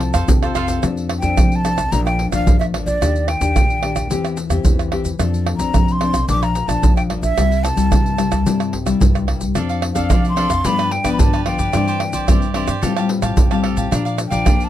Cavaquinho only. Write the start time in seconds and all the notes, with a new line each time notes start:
0.02 muted cavaquinho stroke
0.14 A4 C5 F5
0.29 muted cavaquinho stroke
0.43 A4 C5 F5
0.55 F4 A4 C5 F5
0.68 A4 C5 F5
9.55 D4 A4 D5 F5
9.69 A4 D5 F5
9.83 muted cavaquinho stroke
9.95 A4 D5 F5
10.09 D4 A4 D5 F5
10.36 D4 A4 D5 F5
10.50 A4 D5 F5
10.64 F4 G4 B4 D5
10.78 G4 B4 D5
10.92 muted cavaquinho stroke
11.04 G4 B4 D5
11.33 G4 B4 D5
11.46 F4 G4 B4 D5
11.59 G4 B4 D5
11.74 E4 G4 C5 D5
11.87 G4 C5 D5
12.00 muted cavaquinho stroke
12.13 G4 C5 D5
12.28 E4 G4 C5 D5
12.54 E4 G4 C5 D5
12.68 G4 C5 D5
12.82 G4 A4 F5 A5
12.97 G4 F5 A5
13.09 muted cavaquinho stroke
13.22 G4 F5 A5
13.51 G4 F5 A5
13.64 G4 A4 F5 A5
13.77 G4 F5 A5
13.91 D4 A#4 D5 F5
14.05 A#4 D5 F5
14.18 muted cavaquinho stroke
14.30 A#4 D5 F5
14.45 D4 A#4 D5 F5